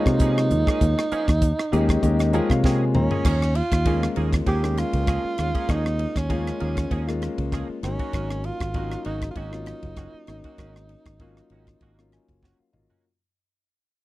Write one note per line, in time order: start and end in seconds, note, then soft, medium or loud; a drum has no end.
0.00 1.01 G#3 medium
0.00 1.01 A#3 medium
0.00 2.64 D#4 medium
0.00 1.01 F4 medium
0.00 1.01 C#5 medium
0.06 0.53 C3 medium
0.06 kick medium
0.06 cross-stick medium
0.20 0.39 F3 medium
0.20 0.40 A#3 medium
0.20 0.40 C#4 medium
0.20 0.40 G#4 medium
0.20 kick loud
0.20 closed hi-hat medium
0.38 cross-stick medium
0.51 0.63 D#2 medium
0.51 muted clean electric guitar stroke soft
0.51 closed hi-hat medium
0.67 0.85 A#3 soft
0.67 0.85 C#4 soft
0.67 0.84 G#4 medium
0.67 kick medium
0.67 cross-stick medium
0.81 0.93 D#2 medium
0.81 kick medium
0.81 closed hi-hat medium
0.98 muted clean electric guitar stroke soft
0.98 cross-stick medium
1.12 1.28 F3 medium
1.12 1.28 A#3 medium
1.12 1.28 C#4 medium
1.12 1.27 G#4 medium
1.12 muted fingered electric bass stroke soft
1.12 closed hi-hat medium
1.28 1.51 D#2 medium
1.28 kick medium
1.28 cross-stick medium
1.28 closed hi-hat soft
1.42 muted clean electric guitar stroke soft
1.42 kick loud
1.42 closed hi-hat medium
1.59 muted clean electric guitar stroke soft
1.59 cross-stick medium
1.72 1.96 D#2 medium
1.72 1.89 F3 medium
1.72 2.00 G#3 medium
1.72 2.00 A#3 medium
1.72 1.89 A#3 medium
1.72 2.00 C#4 medium
1.72 1.89 C#4 medium
1.72 2.00 G4 medium
1.72 1.88 G#4 medium
1.72 1.87 D#5 medium
1.72 closed hi-hat medium
1.89 2.02 C#5 medium
1.89 muted clean electric guitar stroke soft
1.89 kick medium
1.89 cross-stick medium
1.89 closed hi-hat soft
2.02 2.39 D#2 medium
2.02 2.30 G#3 medium
2.02 2.30 A#3 medium
2.02 2.30 C#4 medium
2.02 2.30 G4 medium
2.02 2.18 D#5 medium
2.02 muted clean electric guitar stroke soft
2.02 kick medium
2.02 closed hi-hat medium
2.19 2.32 D#5 medium
2.19 muted clean electric guitar stroke soft
2.19 cross-stick medium
2.19 closed hi-hat soft
2.33 2.53 F3 medium
2.33 3.25 G#3 medium
2.33 3.25 A#3 medium
2.33 2.53 A#3 medium
2.33 2.53 C#4 medium
2.33 3.25 F4 medium
2.33 2.53 G#4 medium
2.33 3.24 C#5 medium
2.33 2.49 G5 medium
2.33 closed hi-hat medium
2.50 2.97 C3 medium
2.50 2.63 F5 medium
2.50 kick medium
2.50 cross-stick medium
2.64 2.83 F3 medium
2.64 2.84 A#3 medium
2.64 2.84 C#4 medium
2.64 2.84 G#4 medium
2.64 2.79 G5 medium
2.64 kick loud
2.64 snare medium
2.81 2.93 G#5 medium
2.94 3.07 D#2 medium
2.94 3.57 C#4 medium
2.94 3.23 A#5 medium
2.94 muted clean electric guitar stroke soft
2.94 mid tom medium
3.11 3.25 A#3 soft
3.11 3.25 C#4 soft
3.11 3.25 G#4 medium
3.11 floor tom medium
3.25 3.61 D#2 medium
3.25 3.42 F3 medium
3.25 3.41 A#3 medium
3.25 3.41 C#4 medium
3.25 3.41 G#4 medium
3.25 kick medium
3.25 cross-stick medium
3.25 crash medium
3.42 muted clean electric guitar stroke soft
3.42 cross-stick medium
3.55 4.16 F4 medium
3.55 muted clean electric guitar stroke soft
3.55 ride medium
3.72 4.06 D#2 medium
3.72 muted clean electric guitar stroke soft
3.72 kick medium
3.72 cross-stick medium
3.72 ride medium
3.85 4.05 F3 soft
3.85 4.55 G#3 medium
3.85 4.55 A#3 medium
3.85 4.05 A#3 medium
3.85 4.55 C#4 medium
3.85 4.05 C#4 medium
3.85 4.55 F4 medium
3.85 4.06 G#4 soft
3.85 kick loud
3.85 ride medium
4.03 cross-stick medium
4.16 4.40 D#2 medium
4.16 4.33 F3 soft
4.16 4.33 A#3 medium
4.16 4.32 C#4 medium
4.16 4.32 G#4 medium
4.16 ride medium
4.33 muted clean electric guitar stroke soft
4.33 kick medium
4.33 cross-stick medium
4.33 ride medium
4.47 4.83 D#2 medium
4.47 4.63 F3 medium
4.47 4.63 A#3 medium
4.47 4.63 C#4 medium
4.47 4.80 G4 medium
4.47 4.62 G#4 medium
4.47 kick medium
4.47 ride medium
4.63 5.32 G#3 medium
4.63 5.31 A#3 medium
4.63 5.31 C#4 medium
4.63 5.31 G#4 medium
4.63 muted clean electric guitar stroke soft
4.63 cross-stick medium
4.77 5.72 F4 medium
4.77 muted clean electric guitar stroke soft
4.77 cross-stick medium
4.77 ride medium
4.93 5.17 C#2 medium
4.93 kick medium
4.93 ride medium
5.07 5.24 F3 medium
5.07 5.24 A#3 medium
5.07 5.24 C#4 medium
5.07 5.23 G#4 medium
5.07 kick loud
5.07 cross-stick medium
5.07 ride medium
5.24 muted clean electric guitar stroke soft
5.24 muted fingered electric bass stroke soft
5.38 5.51 D#2 medium
5.38 6.22 G#3 medium
5.38 6.22 A#3 medium
5.38 6.22 C#4 medium
5.38 6.22 F4 medium
5.38 muted clean electric guitar stroke soft
5.38 cross-stick medium
5.38 ride medium
5.55 5.68 A#3 soft
5.55 5.68 C#4 soft
5.55 5.68 G#4 soft
5.55 kick medium
5.55 ride soft
5.69 6.05 D#2 medium
5.69 5.85 F3 medium
5.69 5.85 A#3 medium
5.69 5.84 C#4 medium
5.69 6.19 D#4 medium
5.69 5.84 G#4 medium
5.69 kick medium
5.69 cross-stick medium
5.69 ride medium
5.85 muted clean electric guitar stroke soft
5.85 cross-stick medium
5.99 muted clean electric guitar stroke soft
5.99 ride medium
6.16 6.50 D#2 medium
6.16 7.08 C#4 medium
6.16 muted clean electric guitar stroke soft
6.16 kick medium
6.16 cross-stick medium
6.16 ride soft
6.29 6.49 F3 soft
6.29 6.99 G#3 medium
6.29 6.99 A#3 medium
6.29 6.49 A#3 soft
6.29 7.00 C#4 medium
6.29 6.50 C#4 medium
6.29 7.00 F4 medium
6.29 6.50 G#4 medium
6.29 kick loud
6.29 ride medium
6.47 cross-stick medium
6.60 6.84 D#2 medium
6.60 6.77 F3 medium
6.60 6.77 A#3 medium
6.60 6.77 C#4 medium
6.60 6.76 G#4 medium
6.60 ride soft
6.77 muted clean electric guitar stroke soft
6.77 kick medium
6.77 cross-stick medium
6.77 ride soft
6.91 7.27 D#2 medium
6.91 7.08 F3 medium
6.91 7.07 A#3 medium
6.91 7.07 C#4 medium
6.91 7.07 G#4 medium
6.91 kick medium
6.91 ride soft
7.07 7.76 G#3 medium
7.07 7.76 A#3 medium
7.07 7.76 C#4 medium
7.07 7.76 F4 medium
7.07 muted clean electric guitar stroke soft
7.07 cross-stick medium
7.22 muted clean electric guitar stroke soft
7.22 cross-stick medium
7.22 ride medium
7.38 7.62 C#2 medium
7.38 kick medium
7.38 ride soft
7.52 7.69 F3 medium
7.52 7.68 A#3 medium
7.52 7.68 C#4 medium
7.52 7.68 G#4 medium
7.52 kick medium
7.52 cross-stick medium
7.52 ride medium
7.69 muted clean electric guitar stroke soft
7.69 muted fingered electric bass stroke soft
7.83 7.96 G#1 medium
7.83 8.67 F#3 medium
7.83 8.67 A#3 medium
7.83 8.67 C#4 medium
7.83 8.46 C#4 medium
7.83 8.67 D#4 medium
7.83 muted clean electric guitar stroke soft
7.83 cross-stick medium
7.83 ride medium
7.99 8.13 A#3 soft
7.99 8.13 C#4 soft
7.99 8.13 F#4 soft
7.99 kick medium
7.99 ride soft
8.13 8.49 G#1 medium
8.13 8.30 D#3 medium
8.13 8.30 A#3 medium
8.13 8.29 C#4 medium
8.13 8.29 F#4 medium
8.13 kick medium
8.13 cross-stick medium
8.13 ride medium
8.30 muted clean electric guitar stroke soft
8.30 cross-stick medium
8.44 9.05 F4 medium
8.44 muted clean electric guitar stroke soft
8.44 ride medium
8.60 8.95 G#1 medium
8.60 muted clean electric guitar stroke soft
8.60 kick medium
8.60 cross-stick medium
8.60 ride medium
8.74 8.94 D#3 soft
8.74 9.44 F#3 medium
8.74 9.44 A#3 medium
8.74 8.94 A#3 soft
8.74 9.45 C#4 medium
8.74 8.94 C#4 soft
8.74 9.44 D#4 medium
8.74 8.95 F#4 medium
8.74 kick loud
8.74 ride medium
8.92 cross-stick medium
9.05 9.29 G#1 medium
9.05 9.22 D#3 medium
9.05 9.22 A#3 soft
9.05 9.22 C#4 medium
9.05 9.28 D#4 medium
9.05 9.21 F#4 medium
9.05 ride medium
9.22 kick medium
9.22 cross-stick medium
9.22 ride medium
9.31 9.38 F4 medium
9.35 9.72 G#1 medium
9.35 9.53 D#3 medium
9.35 9.53 A#3 medium
9.35 9.52 C#4 medium
9.35 12.43 D#4 medium
9.35 9.52 F#4 medium
9.35 kick medium
9.35 ride medium
9.51 10.21 F#3 medium
9.51 10.21 A#3 medium
9.51 10.21 C#4 medium
9.51 10.21 F4 medium
9.51 cross-stick medium
9.66 muted clean electric guitar stroke soft
9.66 cross-stick medium
9.66 ride medium
9.83 10.07 F#1 medium
9.83 kick medium
9.83 ride soft
9.96 10.14 D#3 soft
9.96 10.14 A#3 soft
9.96 10.13 C#4 medium
9.96 10.13 F#4 medium
9.96 kick loud
9.96 cross-stick medium
9.96 ride medium
10.14 muted fingered electric bass stroke soft
10.14 muted clean electric guitar stroke soft
10.27 10.41 G#1 medium
10.27 11.12 F#3 medium
10.27 11.12 A#3 medium
10.27 11.12 C#4 medium
10.27 11.12 D#4 medium
10.27 muted clean electric guitar stroke soft
10.27 cross-stick medium
10.27 ride medium
10.44 10.58 A#3 soft
10.44 10.58 C#4 soft
10.44 10.58 F#4 soft
10.44 kick medium
10.44 ride soft
10.58 10.95 G#1 medium
10.58 10.75 D#3 medium
10.58 10.75 A#3 medium
10.58 10.75 C#4 medium
10.58 10.74 F#4 medium
10.58 kick medium
10.58 cross-stick medium
10.58 ride medium
10.76 cross-stick medium
10.89 muted clean electric guitar stroke soft
10.89 ride medium
11.05 11.40 G#1 medium
11.05 muted clean electric guitar stroke soft
11.05 kick medium
11.05 cross-stick medium
11.05 ride soft
11.19 11.40 D#3 medium
11.19 11.90 F#3 medium
11.19 11.90 A#3 medium
11.19 11.40 A#3 medium
11.19 11.90 C#4 medium
11.19 11.40 C#4 medium
11.19 11.90 F4 medium
11.19 11.40 F#4 medium
11.19 kick medium
11.19 ride medium
11.37 cross-stick medium
11.50 11.74 G#1 medium
11.50 11.67 D#3 medium
11.50 11.67 A#3 medium
11.50 11.67 C#4 medium
11.50 11.67 F#4 medium
11.50 ride medium
11.67 muted clean electric guitar stroke soft
11.67 kick medium
11.67 cross-stick medium
11.67 ride soft
11.81 12.17 G#1 medium
11.81 11.98 D#3 medium
11.81 11.98 A#3 medium
11.81 11.98 C#4 medium
11.81 11.97 F#4 medium
11.81 kick medium
11.81 ride soft
11.99 12.67 F#3 medium
11.99 12.67 A#3 medium
11.99 12.67 C#4 medium
11.99 12.67 F4 medium
11.99 muted clean electric guitar stroke soft
11.99 cross-stick medium
12.12 12.41 G#5 medium
12.12 muted clean electric guitar stroke soft
12.12 cross-stick medium
12.12 ride soft
12.29 12.52 F#1 medium
12.29 kick medium
12.29 ride soft
12.43 12.59 D#3 soft
12.43 12.59 A#3 medium
12.43 12.58 C#4 medium
12.43 12.58 F#4 medium
12.43 12.58 F#5 medium
12.43 kick medium
12.43 snare soft
12.59 12.72 F5 soft
12.59 muted fingered electric bass stroke soft
12.73 12.86 G#1 medium
12.73 13.03 F#3 medium
12.73 13.04 A#3 medium
12.73 13.04 C#4 medium
12.73 13.04 F4 medium
12.73 13.01 D#5 soft
12.73 muted clean electric guitar stroke soft
12.73 mid tom medium
12.90 13.04 A#3 soft
12.90 13.04 C#4 soft
12.90 13.04 F#4 soft
12.90 floor tom medium